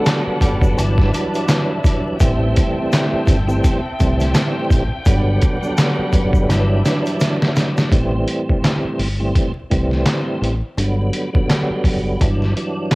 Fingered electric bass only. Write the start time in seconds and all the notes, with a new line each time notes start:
0.27 muted fingered electric bass stroke
0.41 F#1
0.77 G1
2.20 A1
3.13 muted fingered electric bass stroke
3.27 G1
4.00 C2
4.70 A1
5.06 G1
5.98 muted fingered electric bass stroke
6.13 F#1
6.49 G1
7.92 A1
8.84 muted fingered electric bass stroke
8.99 G1
9.72 C2
10.42 A1
10.77 G1
11.70 muted fingered electric bass stroke
11.84 F#1
12.21 G1